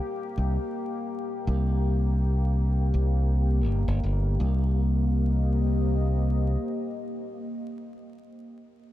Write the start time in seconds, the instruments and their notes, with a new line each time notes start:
Already playing: ambient pad A#3 G4 C5 D#5
0.38 fingered electric bass C2
1.47 fingered electric bass C2
2.94 fingered electric bass C2
3.67 fingered electric bass G1
3.88 fingered electric bass G1
4.04 fingered electric bass G1
4.40 fingered electric bass C2, ambient pad A#3
4.53 ambient pad G4
4.63 ambient pad C5
4.73 ambient pad D#5